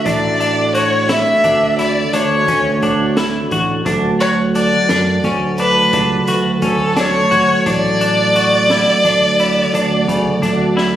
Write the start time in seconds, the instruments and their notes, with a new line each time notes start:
Already playing: tonewheel organ A3 D4 F#4 A4
0.05 fingered electric bass A1, clean electric guitar D4, violin D5, kick, closed hi-hat
0.40 clean electric guitar D4, closed hi-hat
0.75 clean electric guitar F#4, violin C#5, closed hi-hat
1.09 clean electric guitar E4, violin E5, snare, closed hi-hat
1.44 fingered electric bass D2, clean electric guitar D4, kick, closed hi-hat
1.79 clean electric guitar E4, violin D5, snare, closed hi-hat
2.13 fingered electric bass D2, clean electric guitar D4, violin C#5, closed hi-hat
2.47 fingered electric bass D2, clean electric guitar C#4, kick, closed hi-hat
2.82 fingered electric bass D2, clean electric guitar D4, kick, closed hi-hat
3.17 clean electric guitar E4, snare, closed hi-hat
3.51 fingered electric bass A1, clean electric guitar F#4, kick, closed hi-hat
3.86 fingered electric bass D2, tonewheel organ F#3 A3 F#4 A4, clean electric guitar D4, kick, closed hi-hat
4.20 clean electric guitar F#4, violin C#5, closed hi-hat
4.55 clean electric guitar D4, violin D5, closed hi-hat
4.89 fingered electric bass F#2, clean electric guitar D4, snare, closed hi-hat
5.24 fingered electric bass D2, clean electric guitar C#4, kick, snare, closed hi-hat
5.58 clean electric guitar D4, violin B4, closed hi-hat
5.93 fingered electric bass C#2, clean electric guitar D4, kick, closed hi-hat
6.27 fingered electric bass D2, clean electric guitar F#4, closed hi-hat
6.62 fingered electric bass D2, clean electric guitar C#4, violin A4, kick, closed hi-hat
6.97 clean electric guitar D4, violin C#5, snare, closed hi-hat
7.31 fingered electric bass D2, clean electric guitar F#4, kick, closed hi-hat
7.66 fingered electric bass A1, clean electric guitar D4, violin D5, kick, closed hi-hat
8.01 clean electric guitar D4, closed hi-hat
8.36 clean electric guitar F#4, closed hi-hat
8.70 clean electric guitar E4, snare, closed hi-hat
9.04 fingered electric bass D2, clean electric guitar D4, kick, closed hi-hat
9.39 clean electric guitar E4, closed hi-hat
9.74 fingered electric bass D2, clean electric guitar D4, closed hi-hat
10.08 fingered electric bass D2, clean electric guitar C#3, kick, closed hi-hat
10.42 fingered electric bass D2, clean electric guitar D4, kick, snare, closed hi-hat
10.77 clean electric guitar E4, snare